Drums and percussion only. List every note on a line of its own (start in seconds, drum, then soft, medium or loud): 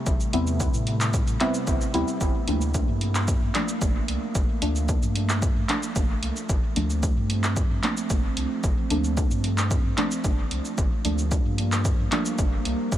0.06 kick loud
0.06 shaker medium
0.20 shaker soft
0.33 closed hi-hat medium
0.47 shaker soft
0.60 kick loud
0.60 shaker medium
0.74 shaker soft
0.87 closed hi-hat medium
1.01 clap medium
1.01 shaker soft
1.14 kick loud
1.14 shaker medium
1.27 closed hi-hat soft
1.27 shaker soft
1.40 clap medium
1.40 closed hi-hat medium
1.54 shaker soft
1.67 kick loud
1.67 shaker medium
1.81 shaker soft
1.94 closed hi-hat medium
2.08 shaker soft
2.21 kick loud
2.21 shaker medium
2.48 closed hi-hat medium
2.61 shaker soft
2.74 kick loud
2.74 shaker medium
3.01 closed hi-hat medium
3.15 clap medium
3.15 shaker soft
3.28 kick loud
3.28 shaker medium
3.55 clap medium
3.55 closed hi-hat medium
3.68 shaker soft
3.81 kick loud
3.81 shaker medium
4.08 closed hi-hat medium
4.35 kick loud
4.35 shaker medium
4.62 closed hi-hat medium
4.76 shaker soft
4.89 kick loud
4.89 shaker medium
5.02 shaker soft
5.16 closed hi-hat medium
5.29 clap medium
5.29 shaker soft
5.42 kick loud
5.42 shaker medium
5.69 clap medium
5.69 closed hi-hat medium
5.83 shaker soft
5.96 kick loud
5.96 shaker medium
6.23 closed hi-hat medium
6.36 shaker soft
6.49 kick loud
6.49 shaker medium
6.76 closed hi-hat medium
6.90 shaker soft
7.03 kick loud
7.03 shaker medium
7.30 closed hi-hat medium
7.44 clap medium
7.44 shaker soft
7.56 kick loud
7.56 shaker medium
7.83 clap medium
7.83 closed hi-hat medium
7.97 shaker soft
8.10 kick loud
8.10 shaker medium
8.37 closed hi-hat medium
8.64 kick loud
8.64 shaker medium
8.90 closed hi-hat medium
9.04 shaker soft
9.17 kick loud
9.17 shaker medium
9.31 shaker soft
9.44 closed hi-hat medium
9.58 clap medium
9.58 shaker soft
9.71 kick loud
9.71 shaker medium
9.98 clap medium
9.98 closed hi-hat medium
10.11 shaker soft
10.24 kick loud
10.24 shaker medium
10.51 closed hi-hat medium
10.65 shaker soft
10.78 kick loud
10.78 shaker medium
11.05 closed hi-hat medium
11.18 shaker soft
11.31 kick loud
11.31 shaker medium
11.58 closed hi-hat medium
11.72 clap medium
11.72 shaker soft
11.85 kick loud
11.85 shaker medium
12.12 clap medium
12.12 closed hi-hat medium
12.26 shaker soft
12.39 kick loud
12.39 shaker medium
12.65 closed hi-hat medium
12.92 kick loud
12.92 shaker medium